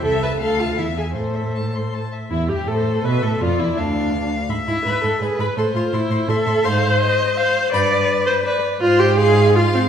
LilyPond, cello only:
\new Staff \with { instrumentName = "Cello" } { \clef bass \time 3/4 \key a \minor \tempo 4 = 166 c,4 d,4 e,4 | a,2~ a,8 r8 | e,8 g,8 a,4 b,8 a,8 | f,8 e,8 d,4. r8 |
gis,8 gis,8 gis,8 gis,8 gis,8 gis,8 | a,8 a,8 a,8 a,8 a,8 a,8 | \key f \dorian aes,4 r2 | g,4 r2 |
aes,2. | }